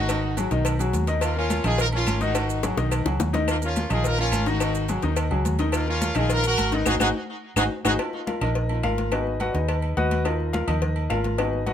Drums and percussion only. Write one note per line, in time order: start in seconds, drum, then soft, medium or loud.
0.09 cowbell loud
0.09 high conga soft
0.09 low agogo loud
0.09 claves medium
0.09 maracas medium
0.24 high conga soft
0.37 cowbell medium
0.37 high conga medium
0.37 low agogo medium
0.37 maracas medium
0.51 cowbell medium
0.51 high conga soft
0.51 maracas soft
0.65 cowbell loud
0.65 high conga soft
0.65 low agogo loud
0.65 claves medium
0.65 maracas medium
0.79 high conga soft
0.79 low agogo loud
0.79 maracas medium
0.93 cowbell medium
0.93 high conga medium
0.93 maracas medium
1.07 cowbell medium
1.07 low agogo medium
1.07 maracas soft
1.21 cowbell loud
1.21 high conga soft
1.21 low agogo loud
1.21 claves medium
1.21 maracas medium
1.36 high conga soft
1.50 cowbell medium
1.50 high conga loud
1.50 low agogo medium
1.50 maracas medium
1.64 cowbell medium
1.64 high conga soft
1.64 low conga medium
1.64 low agogo loud
1.64 claves medium
1.64 maracas soft
1.78 cowbell loud
1.78 high conga soft
1.78 maracas medium
1.92 high conga soft
1.92 low agogo loud
2.07 cowbell medium
2.07 high conga medium
2.07 low agogo loud
2.07 claves medium
2.07 maracas medium
2.21 cowbell medium
2.21 high conga medium
2.21 maracas soft
2.35 cowbell loud
2.35 high conga soft
2.35 low agogo loud
2.35 claves medium
2.35 maracas medium
2.50 high conga soft
2.50 maracas medium
2.63 cowbell medium
2.63 high bongo medium
2.63 high conga medium
2.63 low agogo medium
2.63 maracas medium
2.77 cowbell medium
2.77 high bongo medium
2.77 high conga soft
2.77 maracas soft
2.91 cowbell loud
2.91 high conga soft
2.91 low agogo loud
2.91 claves medium
2.91 maracas medium
3.06 low bongo medium
3.06 high conga soft
3.06 low agogo medium
3.20 cowbell medium
3.20 low bongo loud
3.20 high conga medium
3.20 maracas medium
3.34 cowbell medium
3.34 low bongo medium
3.34 high conga medium
3.34 low agogo medium
3.34 maracas soft
3.48 cowbell loud
3.48 high conga soft
3.48 low agogo loud
3.48 claves medium
3.48 maracas medium
3.62 high conga soft
3.62 maracas medium
3.76 cowbell medium
3.76 high conga loud
3.76 low agogo medium
3.76 maracas medium
3.90 cowbell medium
3.90 high conga soft
3.90 low conga medium
3.90 low agogo loud
3.90 claves medium
3.90 maracas soft
4.04 cowbell loud
4.04 high conga soft
4.04 low conga medium
4.04 maracas medium
4.18 high conga soft
4.18 low agogo medium
4.32 cowbell medium
4.32 high conga medium
4.32 low agogo loud
4.32 claves medium
4.32 maracas medium
4.46 cowbell medium
4.46 maracas soft
4.60 cowbell loud
4.60 high conga soft
4.60 low agogo loud
4.60 claves medium
4.60 maracas medium
4.75 high conga soft
4.75 maracas medium
4.89 cowbell medium
4.89 high conga medium
4.89 low agogo medium
4.89 maracas medium
5.02 cowbell medium
5.02 high conga soft
5.02 maracas soft
5.16 cowbell loud
5.16 high conga soft
5.16 low agogo loud
5.16 claves medium
5.16 maracas medium
5.31 high conga soft
5.31 low agogo medium
5.45 cowbell medium
5.45 high conga medium
5.45 maracas medium
5.59 cowbell medium
5.59 low agogo medium
5.59 maracas soft
5.72 cowbell loud
5.72 low agogo loud
5.72 claves medium
5.72 maracas medium
5.88 high conga soft
6.01 cowbell medium
6.01 high conga loud
6.01 low agogo medium
6.01 maracas medium
6.15 cowbell medium
6.15 high conga soft
6.15 low conga medium
6.15 low agogo loud
6.15 claves medium
6.15 maracas soft
6.30 cowbell loud
6.30 high conga soft
6.30 maracas medium
6.43 high conga soft
6.43 low agogo medium
6.43 maracas medium
6.57 cowbell medium
6.57 high conga medium
6.57 low agogo loud
6.57 claves medium
6.57 maracas medium
6.72 cowbell medium
6.72 high conga medium
6.72 maracas soft
6.86 cowbell loud
6.86 high conga loud
6.86 high timbale loud
6.86 claves loud
6.86 maracas loud
7.00 cowbell loud
7.00 high conga loud
7.00 high timbale loud
7.00 claves loud
7.00 maracas loud
7.56 cowbell loud
7.56 high conga loud
7.56 high timbale loud
7.56 claves loud
7.56 maracas loud
7.85 cowbell loud
7.85 high conga loud
7.85 high timbale loud
7.85 claves loud
7.85 maracas loud
7.99 cowbell loud
7.99 high conga soft
7.99 low agogo loud
7.99 claves medium
8.13 high conga soft
8.27 cowbell medium
8.27 high conga medium
8.27 low agogo medium
8.41 cowbell medium
8.41 high conga soft
8.41 low conga medium
8.41 low agogo loud
8.41 claves medium
8.55 cowbell loud
8.55 high conga soft
8.69 high conga soft
8.69 low agogo loud
8.83 cowbell medium
8.83 high conga medium
8.83 low agogo loud
8.83 claves medium
8.98 cowbell medium
8.98 high conga medium
9.12 cowbell loud
9.12 high conga soft
9.12 low agogo loud
9.12 claves medium
9.27 high conga soft
9.40 cowbell medium
9.40 high conga medium
9.40 low agogo medium
9.55 cowbell medium
9.55 high conga soft
9.68 cowbell loud
9.68 high conga soft
9.68 low agogo loud
9.68 claves medium
9.82 high conga soft
9.82 low agogo medium
9.97 cowbell medium
9.97 high conga medium
10.11 cowbell medium
10.11 high conga medium
10.11 low agogo medium
10.25 cowbell loud
10.25 high conga soft
10.25 low agogo loud
10.25 claves medium
10.40 high conga soft
10.53 cowbell medium
10.53 high conga loud
10.53 low agogo medium
10.68 cowbell medium
10.68 high conga soft
10.68 low conga medium
10.68 low agogo loud
10.68 claves medium
10.82 cowbell loud
10.82 high conga soft
10.82 low conga medium
10.96 high conga soft
10.96 low agogo medium
11.10 cowbell medium
11.10 high conga medium
11.10 low timbale medium
11.10 low agogo loud
11.10 claves medium
11.24 cowbell medium
11.24 high conga medium
11.38 cowbell loud
11.38 high conga soft
11.38 low agogo loud
11.38 claves medium
11.53 high conga soft
11.67 cowbell medium
11.67 high conga medium
11.67 low agogo medium